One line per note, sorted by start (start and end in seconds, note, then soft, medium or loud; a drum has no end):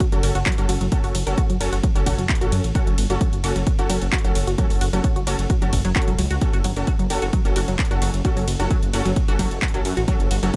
0.00 0.05 F#4 medium
0.00 kick loud
0.00 closed hi-hat medium
0.12 0.20 F#1 medium
0.12 0.19 F#3 medium
0.12 0.21 C#4 medium
0.12 0.21 F#4 medium
0.12 0.21 A4 medium
0.12 closed hi-hat medium
0.23 0.31 F#1 loud
0.23 0.37 C#4 medium
0.23 0.37 F#4 medium
0.23 0.37 A4 medium
0.23 open hi-hat loud
0.23 ride medium
0.35 0.43 F#1 loud
0.35 0.40 F#4 medium
0.35 closed hi-hat medium
0.46 0.53 F#3 medium
0.46 kick loud
0.46 clap loud
0.46 closed hi-hat medium
0.52 closed hi-hat medium
0.58 0.65 F#1 medium
0.58 0.79 C#4 medium
0.58 0.79 F#4 medium
0.58 0.79 A4 medium
0.58 closed hi-hat medium
0.69 0.77 F#1 loud
0.69 0.74 F#4 medium
0.69 open hi-hat loud
0.69 ride medium
0.81 0.88 F#1 medium
0.81 0.88 F#3 medium
0.81 closed hi-hat medium
0.92 1.13 C#4 medium
0.92 1.13 F#4 medium
0.92 1.13 A4 medium
0.92 kick loud
0.92 closed hi-hat medium
1.04 1.11 F#1 medium
1.04 1.08 F#4 medium
1.04 open hi-hat medium
1.15 1.23 F#1 loud
1.15 1.22 F#3 medium
1.15 open hi-hat loud
1.15 ride medium
1.27 1.34 F#1 medium
1.27 1.39 C#4 medium
1.27 1.39 F#4 medium
1.27 1.39 A4 loud
1.27 closed hi-hat medium
1.38 1.42 F#4 medium
1.38 kick loud
1.38 closed hi-hat medium
1.50 1.57 F#1 medium
1.50 1.56 F#3 medium
1.50 closed hi-hat medium
1.61 1.69 F#1 loud
1.61 1.74 C#4 loud
1.61 1.74 F#4 medium
1.61 1.74 A4 loud
1.61 open hi-hat loud
1.61 ride medium
1.73 1.80 F#1 medium
1.73 1.77 F#4 medium
1.73 closed hi-hat medium
1.83 1.91 F#3 medium
1.83 kick loud
1.83 closed hi-hat medium
1.95 2.03 F#1 medium
1.95 2.04 C#4 medium
1.95 2.04 F#4 medium
1.95 2.04 A4 medium
1.95 closed hi-hat medium
2.06 2.15 F#1 loud
2.06 2.20 C#4 medium
2.06 2.20 F#4 medium
2.06 2.11 F#4 medium
2.06 2.20 A4 medium
2.06 kick medium
2.06 open hi-hat loud
2.06 ride medium
2.18 2.26 F#1 medium
2.18 2.25 F#3 medium
2.18 closed hi-hat medium
2.29 kick loud
2.29 clap loud
2.29 closed hi-hat medium
2.35 closed hi-hat medium
2.41 2.49 A1 medium
2.41 2.62 C#4 medium
2.41 2.46 F#4 medium
2.41 2.62 F#4 medium
2.41 2.62 A4 medium
2.41 closed hi-hat medium
2.52 2.60 F#2 loud
2.52 2.59 F#3 medium
2.52 open hi-hat loud
2.52 ride medium
2.64 2.72 A1 medium
2.64 closed hi-hat medium
2.75 2.96 C#4 medium
2.75 2.80 F#4 medium
2.75 2.96 F#4 medium
2.75 2.96 A4 medium
2.75 kick loud
2.75 closed hi-hat medium
2.87 2.94 F#1 medium
2.87 2.94 F#3 medium
2.87 closed hi-hat medium
2.98 3.06 G1 loud
2.98 open hi-hat loud
2.98 ride medium
3.10 3.17 F#1 medium
3.10 3.22 C#4 medium
3.10 3.22 F#4 medium
3.10 3.14 F#4 medium
3.10 3.22 A4 loud
3.10 closed hi-hat medium
3.21 3.28 F#3 medium
3.21 kick loud
3.21 closed hi-hat medium
3.33 3.40 F#1 medium
3.33 closed hi-hat medium
3.44 3.52 F#1 loud
3.44 3.57 C#4 loud
3.44 3.49 F#4 medium
3.44 3.57 F#4 medium
3.44 3.57 A4 loud
3.44 open hi-hat loud
3.44 ride medium
3.56 3.63 F#1 medium
3.56 3.62 F#3 medium
3.56 closed hi-hat medium
3.67 kick loud
3.67 closed hi-hat medium
3.79 3.86 F#1 medium
3.79 3.87 C#4 medium
3.79 3.87 F#4 medium
3.79 3.83 F#4 medium
3.79 3.87 A4 medium
3.79 closed hi-hat medium
3.90 3.98 F#1 loud
3.90 3.97 F#3 medium
3.90 4.03 C#4 medium
3.90 4.03 F#4 medium
3.90 4.03 A4 medium
3.90 open hi-hat loud
3.90 ride medium
4.02 4.09 F#1 medium
4.02 closed hi-hat medium
4.12 4.17 F#4 medium
4.12 kick loud
4.12 clap loud
4.12 closed hi-hat medium
4.18 closed hi-hat medium
4.24 4.32 F#1 medium
4.24 4.31 F#3 medium
4.24 4.45 C#4 medium
4.24 4.45 F#4 medium
4.24 4.45 A4 medium
4.24 closed hi-hat medium
4.35 4.44 F#1 loud
4.35 open hi-hat loud
4.35 ride medium
4.47 4.55 F#1 medium
4.47 4.52 F#4 medium
4.47 closed hi-hat medium
4.58 4.65 F#3 medium
4.58 4.79 C#4 medium
4.58 4.79 F#4 medium
4.58 4.79 A4 medium
4.58 kick loud
4.58 closed hi-hat medium
4.70 4.78 F#1 medium
4.70 open hi-hat medium
4.81 4.89 F#1 loud
4.81 4.86 F#4 medium
4.81 open hi-hat loud
4.81 ride medium
4.93 5.01 F#1 medium
4.93 5.00 F#3 medium
4.93 5.06 C#4 medium
4.93 5.06 F#4 medium
4.93 5.06 A4 loud
4.93 closed hi-hat medium
5.04 kick loud
5.04 closed hi-hat medium
5.16 5.23 F#1 medium
5.16 5.20 F#4 medium
5.16 closed hi-hat medium
5.27 5.35 F#1 loud
5.27 5.34 F#3 medium
5.27 5.40 C#4 loud
5.27 5.40 F#4 medium
5.27 5.40 A4 loud
5.27 open hi-hat loud
5.27 ride medium
5.39 5.46 F#1 medium
5.39 closed hi-hat medium
5.50 5.55 F#4 medium
5.50 kick loud
5.50 closed hi-hat medium
5.62 5.69 F#1 medium
5.62 5.68 F#3 medium
5.62 5.71 C#4 medium
5.62 5.71 F#4 medium
5.62 5.71 A4 medium
5.62 closed hi-hat medium
5.73 5.81 F#1 loud
5.73 kick medium
5.73 open hi-hat loud
5.73 ride medium
5.85 5.92 F#1 loud
5.85 5.89 F#3 loud
5.85 closed hi-hat medium
5.96 6.09 C#4 medium
5.96 6.00 F#4 loud
5.96 6.09 F#4 medium
5.96 6.09 A4 loud
5.96 kick loud
5.96 clap loud
5.96 closed hi-hat soft
6.02 closed hi-hat medium
6.08 6.15 E1 medium
6.08 6.14 F#3 medium
6.08 closed hi-hat medium
6.19 6.27 C#2 loud
6.19 6.21 F#3 loud
6.19 open hi-hat loud
6.19 ride medium
6.31 6.38 C#2 medium
6.31 6.35 F#4 medium
6.31 closed hi-hat medium
6.41 6.62 C#4 medium
6.41 6.62 F#4 medium
6.41 6.62 A4 medium
6.41 kick loud
6.41 closed hi-hat medium
6.53 6.61 F#1 medium
6.53 6.58 F#4 medium
6.53 closed hi-hat soft
6.64 6.73 G1 loud
6.64 6.72 F#3 medium
6.64 open hi-hat loud
6.64 ride medium
6.76 6.84 F#1 medium
6.76 6.89 C#4 medium
6.76 6.89 F#4 medium
6.76 6.89 A4 loud
6.76 closed hi-hat medium
6.87 6.92 F#4 medium
6.87 kick loud
6.87 closed hi-hat medium
6.99 7.07 F#1 medium
6.99 7.06 F#3 medium
6.99 closed hi-hat medium
7.10 7.18 F#1 loud
7.10 7.24 C#4 loud
7.10 7.24 F#4 medium
7.10 7.24 A4 loud
7.10 open hi-hat loud
7.10 ride medium
7.22 7.30 F#1 medium
7.22 7.27 F#4 medium
7.22 closed hi-hat medium
7.33 7.40 F#3 medium
7.33 kick loud
7.33 closed hi-hat medium
7.45 7.53 F#1 medium
7.45 7.54 C#4 medium
7.45 7.54 F#4 medium
7.45 7.54 A4 medium
7.45 closed hi-hat medium
7.56 7.64 F#1 loud
7.56 7.69 C#4 medium
7.56 7.61 F#4 medium
7.56 7.69 F#4 medium
7.56 7.69 A4 medium
7.56 open hi-hat loud
7.56 ride medium
7.68 7.75 F#1 medium
7.68 7.75 F#3 medium
7.68 closed hi-hat medium
7.79 kick loud
7.79 clap loud
7.79 closed hi-hat soft
7.85 closed hi-hat medium
7.91 7.98 F#1 medium
7.91 8.12 C#4 medium
7.91 8.12 F#4 medium
7.91 7.95 F#4 medium
7.91 8.12 A4 medium
7.91 closed hi-hat medium
8.02 8.10 F#1 loud
8.02 8.09 F#3 medium
8.02 open hi-hat loud
8.02 ride medium
8.14 8.21 F#1 medium
8.14 closed hi-hat medium
8.25 8.46 C#4 medium
8.25 8.46 F#4 medium
8.25 8.30 F#4 medium
8.25 8.46 A4 medium
8.25 kick loud
8.25 closed hi-hat medium
8.37 8.44 F#1 medium
8.37 8.43 F#3 medium
8.37 open hi-hat medium
8.48 8.56 F#1 loud
8.48 open hi-hat loud
8.48 ride medium
8.60 8.67 F#1 medium
8.60 8.72 C#4 medium
8.60 8.72 F#4 medium
8.60 8.64 F#4 medium
8.60 8.72 A4 loud
8.60 closed hi-hat medium
8.71 8.78 F#3 medium
8.71 kick loud
8.71 closed hi-hat medium
8.83 8.90 F#1 medium
8.83 closed hi-hat medium
8.93 9.02 F#1 loud
8.93 9.07 C#4 loud
8.93 8.98 F#4 medium
8.93 9.07 F#4 medium
8.93 9.07 A4 loud
8.93 open hi-hat loud
8.93 ride medium
9.05 9.13 F#1 medium
9.05 9.12 F#3 medium
9.05 closed hi-hat medium
9.16 kick loud
9.16 closed hi-hat medium
9.28 9.36 F#1 medium
9.28 9.37 C#4 medium
9.28 9.33 F#4 medium
9.28 9.37 F#4 medium
9.28 9.37 A4 medium
9.28 closed hi-hat medium
9.39 9.47 F#1 loud
9.39 9.46 F#3 medium
9.39 9.53 C#4 medium
9.39 9.53 F#4 medium
9.39 9.53 A4 medium
9.39 kick medium
9.39 open hi-hat loud
9.39 ride medium
9.51 9.59 F#1 loud
9.51 closed hi-hat soft
9.62 9.67 F#4 medium
9.62 kick loud
9.62 clap loud
9.62 closed hi-hat soft
9.68 closed hi-hat medium
9.74 9.82 A1 medium
9.74 9.81 F#3 medium
9.74 9.95 C#4 medium
9.74 9.95 F#4 medium
9.74 9.95 A4 medium
9.74 closed hi-hat medium
9.85 9.93 F#2 loud
9.85 open hi-hat loud
9.85 ride medium
9.97 10.04 A1 medium
9.97 10.01 F#4 medium
9.97 closed hi-hat medium
10.08 10.15 F#3 medium
10.08 10.29 C#4 medium
10.08 10.29 F#4 medium
10.08 10.29 A4 medium
10.08 kick loud
10.08 closed hi-hat medium
10.20 10.27 F#1 medium
10.20 closed hi-hat medium
10.31 10.39 G1 loud
10.31 10.36 F#4 medium
10.31 open hi-hat loud
10.31 ride medium
10.43 10.50 F#1 medium
10.43 10.49 F#3 medium
10.43 10.55 C#4 medium
10.43 10.55 F#4 medium
10.43 10.55 A4 loud
10.43 closed hi-hat medium